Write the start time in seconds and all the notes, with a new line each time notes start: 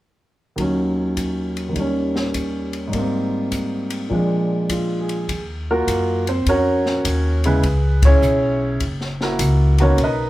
0.56 D#2 D#3 F#3, kick, ride
0.61 C#4
1.17 kick, hi-hat pedal, ride
1.57 ride
1.69 D#2 D#3
1.76 G3, kick, ride
1.80 C#4
2.16 snare
2.34 kick, hi-hat pedal, ride
2.73 ride
2.88 G#2 G3
2.93 A#3, kick, ride
2.98 C4
3.52 kick, hi-hat pedal, ride
3.90 ride
4.09 A#2 F3 G#3, kick
4.14 D4
4.70 F4, kick, hi-hat pedal, ride
5.01 G#4
5.09 ride
5.28 D#2, kick, ride
5.71 A#3 F4 F#4 A#4
5.87 F#2, kick, hi-hat pedal, ride
6.27 C4 C5, ride
6.46 F2 C#4 F#4 A#4 C#5, kick, ride
6.86 snare
7.05 D#2, kick, hi-hat pedal, ride
7.44 C#3 G#3 B3 E4 G#4 B4, ride
7.63 C#2, kick, ride
8.03 E4 G#4 C#5, kick, ride
8.07 C#4
8.21 B1, hi-hat pedal
8.80 F#1, kick, ride
9.01 snare
9.21 A#3 E4 F#4 A#4, snare
9.39 C#2, kick, hi-hat pedal, ride
9.78 D#3 A#3 B3 F#4 C#5, ride
9.82 C#4 A#4
9.98 B1, kick, ride
10.04 D#4 A#4 B4 D#5